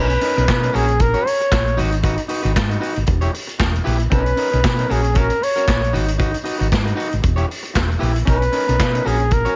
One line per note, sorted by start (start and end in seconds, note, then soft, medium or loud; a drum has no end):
0.00 0.15 B1 loud
0.00 0.12 C#4 medium
0.00 0.76 B4 medium
0.10 muted clean electric guitar stroke soft
0.10 closed hi-hat soft
0.21 0.35 C#4 medium
0.21 0.35 D#4 medium
0.21 0.35 A#4 medium
0.21 open hi-hat medium
0.36 0.46 B1 medium
0.36 0.46 C#4 medium
0.36 0.47 D#4 medium
0.36 0.47 A#4 medium
0.36 closed hi-hat soft
0.48 0.68 B2 medium
0.48 kick loud
0.48 snare loud
0.48 clap medium
0.62 0.72 C#4 soft
0.62 0.73 D#4 medium
0.62 0.73 A#4 medium
0.62 closed hi-hat soft
0.73 1.13 A#1 loud
0.73 0.90 C#4 medium
0.73 0.87 F#4 medium
0.73 1.03 G#4 medium
0.73 0.86 A#4 loud
0.73 open hi-hat medium
0.88 muted clean electric guitar stroke soft
0.88 closed hi-hat soft
0.99 1.29 A#4 medium
0.99 muted clean electric guitar stroke soft
0.99 kick loud
0.99 closed hi-hat medium
1.14 1.24 C#4 medium
1.14 1.25 F#4 medium
1.14 1.26 C#5 medium
1.14 closed hi-hat soft
1.25 1.78 C#5 loud
1.25 muted clean electric guitar stroke soft
1.25 open hi-hat medium
1.40 muted clean electric guitar stroke soft
1.40 closed hi-hat soft
1.52 1.79 A#1 medium
1.52 muted clean electric guitar stroke soft
1.52 kick loud
1.52 snare loud
1.52 clap medium
1.66 muted clean electric guitar stroke soft
1.66 closed hi-hat soft
1.77 2.17 G#1 loud
1.77 1.94 D#4 medium
1.77 1.92 F#4 loud
1.77 1.91 B4 loud
1.77 open hi-hat soft
1.92 muted clean electric guitar stroke soft
1.92 closed hi-hat soft
2.03 2.20 D#4 medium
2.03 2.17 F#4 medium
2.03 2.17 B4 medium
2.03 kick loud
2.03 closed hi-hat medium
2.17 muted clean electric guitar stroke soft
2.17 closed hi-hat soft
2.28 2.42 D#4 medium
2.28 2.42 F#4 medium
2.28 2.41 B4 medium
2.28 open hi-hat medium
2.43 2.53 G#1 loud
2.43 2.53 D#4 medium
2.43 2.54 F#4 medium
2.43 2.54 B4 medium
2.43 closed hi-hat soft
2.54 2.76 G#2 medium
2.54 muted clean electric guitar stroke soft
2.54 kick loud
2.54 snare loud
2.54 clap medium
2.68 2.79 D#4 medium
2.68 2.80 F#4 medium
2.68 2.80 B4 medium
2.68 closed hi-hat soft
2.80 2.98 D#4 medium
2.80 2.95 F#4 medium
2.80 2.94 B4 medium
2.80 open hi-hat soft
2.95 3.05 G#1 medium
2.95 muted clean electric guitar stroke soft
2.95 closed hi-hat soft
3.06 3.27 E1 loud
3.06 muted clean electric guitar stroke soft
3.06 kick loud
3.06 closed hi-hat medium
3.21 3.32 E4 medium
3.21 3.32 G4 medium
3.21 3.34 C#5 medium
3.21 closed hi-hat soft
3.33 muted clean electric guitar stroke soft
3.33 open hi-hat medium
3.47 muted clean electric guitar stroke soft
3.47 closed hi-hat soft
3.59 3.79 E1 medium
3.59 muted clean electric guitar stroke soft
3.59 kick loud
3.59 snare loud
3.59 clap medium
3.73 muted clean electric guitar stroke soft
3.73 closed hi-hat soft
3.84 4.06 A#1 medium
3.84 4.01 E4 medium
3.84 3.99 G4 medium
3.84 3.97 B4 medium
3.84 open hi-hat medium
3.99 muted clean electric guitar stroke medium
3.99 closed hi-hat soft
4.10 4.31 B1 loud
4.10 4.32 C#4 medium
4.10 4.25 D#4 medium
4.10 4.24 A#4 medium
4.10 4.93 B4 medium
4.10 kick loud
4.10 closed hi-hat medium
4.25 muted clean electric guitar stroke soft
4.25 closed hi-hat soft
4.36 4.50 C#4 medium
4.36 4.50 D#4 medium
4.36 4.49 A#4 medium
4.36 open hi-hat medium
4.50 4.61 B1 medium
4.50 4.62 C#4 soft
4.50 4.62 D#4 medium
4.50 4.62 A#4 medium
4.50 closed hi-hat soft
4.63 4.83 B2 medium
4.63 muted clean electric guitar stroke soft
4.63 kick loud
4.63 snare loud
4.63 clap medium
4.77 4.88 C#4 medium
4.77 4.89 D#4 medium
4.77 4.88 A#4 medium
4.77 closed hi-hat soft
4.89 5.29 A#1 medium
4.89 5.06 C#4 medium
4.89 5.03 F#4 medium
4.89 5.19 G#4 medium
4.89 5.02 A#4 medium
4.89 open hi-hat medium
5.03 muted clean electric guitar stroke soft
5.03 closed hi-hat soft
5.14 5.31 C#4 medium
5.14 5.29 F#4 medium
5.14 5.28 A#4 medium
5.14 5.45 A#4 medium
5.14 kick loud
5.14 closed hi-hat medium
5.29 muted clean electric guitar stroke soft
5.29 closed hi-hat soft
5.41 5.94 C#5 loud
5.41 muted clean electric guitar stroke medium
5.41 open hi-hat medium
5.56 5.66 C#4 soft
5.56 5.67 F#4 soft
5.56 5.66 A#4 medium
5.56 closed hi-hat soft
5.67 5.96 A#1 medium
5.67 muted clean electric guitar stroke soft
5.67 kick loud
5.67 snare loud
5.67 clap medium
5.81 muted clean electric guitar stroke soft
5.81 closed hi-hat soft
5.93 6.33 G#1 medium
5.93 6.10 D#4 medium
5.93 6.07 F#4 medium
5.93 6.06 B4 medium
5.93 open hi-hat medium
6.07 muted clean electric guitar stroke soft
6.07 closed hi-hat soft
6.18 6.35 D#4 medium
6.18 6.33 F#4 medium
6.18 6.32 B4 medium
6.18 kick loud
6.18 closed hi-hat medium
6.33 muted clean electric guitar stroke soft
6.33 closed hi-hat soft
6.44 6.58 D#4 medium
6.44 6.58 F#4 medium
6.44 6.57 B4 medium
6.44 open hi-hat medium
6.58 6.69 G#1 medium
6.58 6.68 D#4 soft
6.58 6.69 F#4 medium
6.58 6.69 B4 medium
6.58 closed hi-hat soft
6.70 6.91 G#2 loud
6.70 muted clean electric guitar stroke soft
6.70 kick loud
6.70 clap medium
6.74 snare loud
6.84 6.94 D#4 medium
6.84 6.95 F#4 medium
6.84 6.95 B4 medium
6.84 closed hi-hat soft
6.95 7.13 D#4 medium
6.95 7.10 F#4 medium
6.95 7.09 B4 loud
7.00 open hi-hat soft
7.10 7.21 G#1 medium
7.10 muted clean electric guitar stroke soft
7.10 closed hi-hat soft
7.22 7.43 E1 loud
7.22 muted clean electric guitar stroke soft
7.22 kick loud
7.22 closed hi-hat medium
7.36 7.47 E4 medium
7.36 7.47 G4 medium
7.36 7.48 C#5 medium
7.36 closed hi-hat soft
7.48 muted clean electric guitar stroke soft
7.48 open hi-hat medium
7.63 muted clean electric guitar stroke soft
7.63 closed hi-hat soft
7.74 7.95 E1 medium
7.74 muted clean electric guitar stroke soft
7.74 kick loud
7.74 snare loud
7.74 clap medium
7.88 muted clean electric guitar stroke soft
7.88 closed hi-hat soft
7.99 8.21 A#1 medium
7.99 8.17 E4 medium
7.99 8.14 G4 medium
7.99 8.13 B4 medium
7.99 open hi-hat soft
8.14 muted clean electric guitar stroke soft
8.14 closed hi-hat medium
8.25 8.47 B1 medium
8.25 8.43 C#4 medium
8.25 8.40 D#4 medium
8.25 8.39 A#4 medium
8.25 9.08 B4 medium
8.25 kick loud
8.25 closed hi-hat medium
8.40 muted clean electric guitar stroke soft
8.40 closed hi-hat soft
8.52 8.66 C#4 medium
8.52 8.67 D#4 medium
8.52 8.66 A#4 medium
8.52 open hi-hat medium
8.67 8.77 B1 medium
8.67 8.77 C#4 soft
8.67 8.78 D#4 soft
8.67 8.78 A#4 medium
8.67 closed hi-hat soft
8.79 8.99 B2 medium
8.79 muted clean electric guitar stroke soft
8.79 kick loud
8.79 snare loud
8.79 clap medium
8.92 9.03 C#4 soft
8.92 9.04 D#4 medium
8.92 9.04 A#4 medium
8.92 closed hi-hat medium
9.04 9.45 A#1 loud
9.04 9.21 C#4 medium
9.04 9.19 F#4 medium
9.04 9.35 G#4 medium
9.04 9.18 A#4 medium
9.04 open hi-hat medium
9.19 muted clean electric guitar stroke soft
9.19 closed hi-hat soft
9.31 9.56 A#4 loud
9.31 muted clean electric guitar stroke soft
9.31 kick loud
9.31 closed hi-hat medium
9.45 9.56 C#4 medium
9.45 9.56 F#4 medium
9.45 9.56 C#5 medium
9.45 closed hi-hat soft